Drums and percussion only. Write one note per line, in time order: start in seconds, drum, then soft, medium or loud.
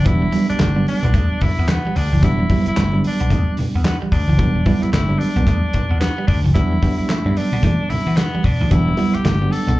0.06 kick loud
0.06 closed hi-hat loud
0.06 muted conga medium
0.32 open hi-hat medium
0.32 muted conga medium
0.50 closed hi-hat medium
0.59 snare loud
0.59 clap loud
0.59 closed hi-hat loud
0.59 high conga medium
0.87 open hi-hat medium
0.87 muted conga soft
1.02 closed hi-hat medium
1.02 low conga medium
1.14 kick loud
1.14 closed hi-hat medium
1.14 muted conga medium
1.41 kick loud
1.41 open hi-hat medium
1.41 low conga medium
1.68 snare loud
1.68 clap loud
1.68 closed hi-hat loud
1.68 high conga medium
1.85 high conga medium
1.96 open hi-hat loud
2.12 high conga medium
2.23 kick loud
2.23 closed hi-hat loud
2.23 muted conga medium
2.50 kick loud
2.50 open hi-hat medium
2.50 muted conga medium
2.66 closed hi-hat medium
2.77 snare loud
2.77 clap medium
2.77 closed hi-hat loud
2.77 high conga medium
3.04 open hi-hat medium
3.04 muted conga soft
3.20 closed hi-hat medium
3.30 kick medium
3.30 closed hi-hat medium
3.30 muted conga medium
3.30 low conga loud
3.57 open hi-hat medium
3.57 low conga medium
3.84 snare loud
3.84 clap loud
3.84 closed hi-hat medium
3.84 high conga medium
4.02 high conga medium
4.12 kick loud
4.12 open hi-hat medium
4.28 high conga medium
4.39 kick loud
4.39 closed hi-hat medium
4.39 muted conga medium
4.66 kick loud
4.66 open hi-hat medium
4.66 muted conga medium
4.83 closed hi-hat medium
4.93 snare loud
4.93 clap loud
4.93 closed hi-hat medium
4.93 high conga medium
5.20 open hi-hat medium
5.20 muted conga soft
5.36 closed hi-hat soft
5.36 low conga medium
5.47 kick medium
5.47 closed hi-hat medium
5.47 muted conga medium
5.73 kick loud
5.73 closed hi-hat medium
5.73 low conga medium
6.01 snare loud
6.01 clap loud
6.01 closed hi-hat loud
6.01 high conga medium
6.28 kick loud
6.28 open hi-hat medium
6.44 high conga medium
6.56 kick loud
6.56 closed hi-hat loud
6.56 muted conga medium
6.82 kick loud
6.82 open hi-hat medium
6.82 muted conga medium
7.09 snare loud
7.09 clap loud
7.09 closed hi-hat medium
7.09 high conga medium
7.36 open hi-hat medium
7.36 muted conga soft
7.63 kick medium
7.63 closed hi-hat loud
7.63 muted conga medium
7.63 low conga medium
7.90 open hi-hat medium
7.90 low conga medium
8.17 snare loud
8.17 clap medium
8.17 closed hi-hat loud
8.17 high conga medium
8.35 high conga medium
8.44 kick medium
8.44 open hi-hat medium
8.60 high conga medium
8.71 kick loud
8.71 closed hi-hat loud
8.71 muted conga medium
8.97 open hi-hat medium
8.97 muted conga medium
9.15 closed hi-hat medium
9.25 snare loud
9.25 clap loud
9.25 closed hi-hat medium
9.25 high conga medium
9.53 open hi-hat medium
9.67 closed hi-hat medium
9.67 low conga medium